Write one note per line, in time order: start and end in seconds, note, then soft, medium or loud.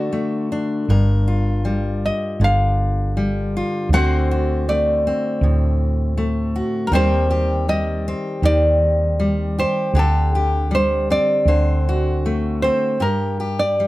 0.00 0.89 D3 soft
0.00 0.11 A3 soft
0.00 0.51 D4 soft
0.00 0.85 F#4 soft
0.00 0.90 A4 soft
0.00 0.49 D5 soft
0.12 0.84 A3 soft
0.52 3.93 D4 soft
0.88 2.10 G1 medium
0.88 3.92 G2 soft
0.88 3.88 A#4 soft
1.28 3.54 F4 soft
1.65 3.16 G3 soft
2.06 2.43 D#5 medium
2.40 3.60 G1 medium
2.40 3.92 D3 soft
2.44 3.93 F5 medium
3.17 3.92 G3 soft
3.57 3.89 F4 soft
3.89 5.10 D2 medium
3.89 6.91 D3 soft
3.93 4.68 A3 soft
3.93 5.07 C4 soft
3.93 4.30 F#4 soft
3.93 6.95 C5 soft
3.93 4.69 F#5 medium
4.31 6.54 F#4 soft
4.69 6.16 A3 soft
4.69 6.51 D5 medium
5.07 6.93 C4 soft
5.41 6.61 D2 medium
5.41 6.88 A2 soft
6.17 6.87 A3 soft
6.56 6.88 F#4 soft
6.87 6.93 A#4 medium
6.91 8.12 D#2 medium
6.91 8.42 D#3 medium
6.91 7.67 G3 soft
6.91 8.07 C4 soft
6.91 7.29 G4 soft
6.91 9.91 A#4 soft
6.91 7.69 C5 medium
7.31 9.57 G4 soft
7.69 9.18 G3 soft
7.69 8.40 D#5 medium
8.08 11.09 C4 soft
8.42 9.63 D#2 medium
8.42 9.90 D#3 soft
8.42 9.59 D5 medium
9.20 10.70 G3 soft
9.58 9.91 G4 soft
9.58 9.97 C5 medium
9.93 11.15 D2 medium
9.93 11.47 D3 soft
9.93 10.33 G4 soft
9.99 10.75 A4 medium
10.35 11.44 G4 soft
10.71 11.47 G3 soft
10.71 11.11 C5 medium
11.10 12.63 C4 soft
11.10 12.60 D5 medium
11.45 12.69 D2 medium
11.45 13.01 D3 soft
11.45 12.97 C5 soft
11.89 12.98 F#4 soft
12.26 12.97 A3 soft
12.62 13.02 C4 soft
12.62 13.02 C5 medium
13.00 13.87 G2 soft
13.00 13.39 G4 soft
13.00 13.61 A#4 medium
13.40 13.87 G4 soft
13.59 13.87 D5 medium
13.80 13.87 G3 soft